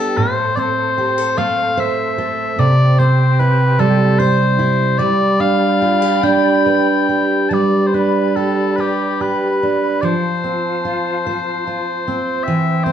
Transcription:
Already playing: steel-string acoustic guitar G3 B3 D4 G4 A4, bagpipes A4, flute section A4 B4 G5
0.15 steel-string acoustic guitar A2, flute section C5, bagpipes C5
0.56 steel-string acoustic guitar C4, bagpipes C5 D5
0.98 steel-string acoustic guitar G4
1.18 steel-string acoustic guitar A4
1.38 steel-string acoustic guitar A3, bagpipes F5
1.77 steel-string acoustic guitar C5, bagpipes E5
2.18 steel-string acoustic guitar A4
2.57 steel-string acoustic guitar C3, flute section C4 G4, bagpipes D5
2.99 steel-string acoustic guitar C4, bagpipes C5
3.40 steel-string acoustic guitar E4, bagpipes B4
3.79 steel-string acoustic guitar G3, bagpipes A4
4.19 bagpipes C5, steel-string acoustic guitar C5
4.59 steel-string acoustic guitar E4
4.98 steel-string acoustic guitar G3, flute section G4 D5 B5, bagpipes D5
5.40 steel-string acoustic guitar D4, bagpipes F5
5.82 steel-string acoustic guitar F4
6.02 steel-string acoustic guitar G4
6.23 steel-string acoustic guitar D4, bagpipes G5
6.66 steel-string acoustic guitar B4
7.09 steel-string acoustic guitar G4
7.49 steel-string acoustic guitar G3, flute section G4 D5 B5, bagpipes A5
7.53 bagpipes D5
7.87 bagpipes C5
7.94 steel-string acoustic guitar D4, bagpipes B4
8.36 steel-string acoustic guitar G4, bagpipes A4
8.76 bagpipes G4 B4, steel-string acoustic guitar B4
9.21 steel-string acoustic guitar G4, bagpipes B4
9.63 steel-string acoustic guitar D4
10.01 steel-string acoustic guitar F3, flute section F4 C5 A5, bagpipes C5 D5
10.44 steel-string acoustic guitar C4
10.85 steel-string acoustic guitar F4
11.27 steel-string acoustic guitar C5
11.67 steel-string acoustic guitar F4
12.08 steel-string acoustic guitar C4
12.43 flute section E4 G5, bagpipes E5
12.48 steel-string acoustic guitar E3
12.84 steel-string acoustic guitar C4, bagpipes C5

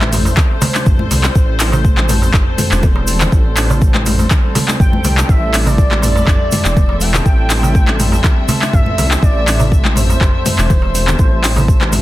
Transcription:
Already playing: detuned saw bass A1, string section G3 C4 A4 C5, analog synth lead E5
0.01 clap, high conga
0.13 mid tom, open hi-hat, high conga, darbuka tek, shaker
0.25 darbuka ka, shaker
0.37 kick, clap, darbuka tek, low conga, shaker
0.61 open hi-hat, high conga, darbuka tek, darbuka dum, low conga, shaker
0.75 clap, high conga, shaker
0.86 detuned saw bass A1, kick, mid tom, shaker
0.99 high conga
1.11 detuned saw bass C2, open hi-hat, darbuka ka, high conga, low conga, shaker
1.24 clap, shaker
1.35 detuned saw bass A1, kick, shaker
1.60 clap, open hi-hat, shaker
1.72 darbuka ka, darbuka tek, darbuka dum, shaker
1.85 kick, shaker
1.97 clap, high conga
2.09 mid tom, open hi-hat, high conga, darbuka tek, shaker
2.22 darbuka ka, shaker
2.33 detuned saw bass G1, kick, clap, mid tom, darbuka tek, shaker
2.58 mid tom, open hi-hat, high conga, low conga, shaker
2.71 detuned saw bass E1, clap, shaker
2.83 kick, high conga, low conga, shaker
2.96 darbuka ka
3.07 open hi-hat, high conga, shaker
3.20 clap, low conga, shaker
3.32 detuned saw bass A1, kick, shaker
3.56 clap, open hi-hat, shaker
3.70 darbuka ka, darbuka tek, darbuka dum, shaker
3.82 kick, shaker
3.94 clap, high conga
4.06 mid tom, open hi-hat, darbuka tek, high conga, shaker
4.19 darbuka ka, shaker
4.30 kick, clap, darbuka tek, low conga, shaker
4.55 open hi-hat, darbuka tek, high conga, low conga, darbuka dum, shaker
4.68 clap, high conga, shaker
4.80 detuned saw bass A1, analog synth lead G5, kick, mid tom, shaker
4.93 high conga
5.04 detuned saw bass C2, open hi-hat, darbuka ka, high conga, low conga, shaker
5.18 clap, shaker
5.29 detuned saw bass A1, analog synth lead E5, string section E5, kick, shaker
5.54 clap, open hi-hat, shaker
5.66 analog synth lead D5, darbuka ka, darbuka tek, darbuka dum, shaker
5.78 kick, shaker
5.91 clap, high conga
6.02 analog synth lead D5, mid tom, open hi-hat, darbuka tek, high conga, shaker
6.16 darbuka ka, shaker
6.26 detuned saw bass G1, kick, clap, mid tom, darbuka tek, shaker
6.51 mid tom, open hi-hat, high conga, low conga, shaker
6.65 detuned saw bass E1, clap, shaker
6.77 kick, high conga, low conga, shaker
6.89 darbuka ka
7.01 analog synth lead G5, open hi-hat, high conga, shaker
7.14 clap, low conga, shaker
7.26 detuned saw bass A1, kick, shaker
7.50 clap, open hi-hat, shaker
7.63 darbuka ka, darbuka tek, darbuka dum, shaker
7.75 kick, shaker
7.87 clap, high conga
7.99 mid tom, open hi-hat, high conga, darbuka tek, shaker
8.12 darbuka ka, shaker
8.24 kick, clap, darbuka tek, low conga, shaker
8.48 open hi-hat, high conga, darbuka tek, low conga, darbuka dum, shaker
8.62 clap, high conga, shaker
8.73 detuned saw bass A1, analog synth lead E5, kick, mid tom, shaker
8.86 high conga
8.98 detuned saw bass C2, open hi-hat, darbuka ka, high conga, low conga, shaker
9.11 clap, shaker
9.22 detuned saw bass A1, analog synth lead D5, kick, shaker
9.48 clap, open hi-hat, shaker
9.60 darbuka ka, darbuka tek, darbuka dum, shaker
9.72 kick, shaker
9.85 clap, high conga
9.96 analog synth lead C5, mid tom, open hi-hat, darbuka tek, high conga, shaker
10.10 darbuka ka, shaker
10.21 detuned saw bass G1, kick, clap, mid tom, darbuka tek, shaker
10.46 mid tom, open hi-hat, high conga, low conga, shaker
10.58 detuned saw bass E1, clap, shaker
10.70 kick, high conga, low conga, shaker
10.82 darbuka ka
10.95 open hi-hat, high conga, shaker
11.08 clap, low conga, shaker
11.19 detuned saw bass A1, kick, shaker
11.44 clap, open hi-hat, shaker
11.56 darbuka ka, darbuka tek, low conga, darbuka dum, shaker
11.68 kick, shaker
11.81 clap, high conga
11.92 mid tom, open hi-hat, high conga, darbuka tek, shaker

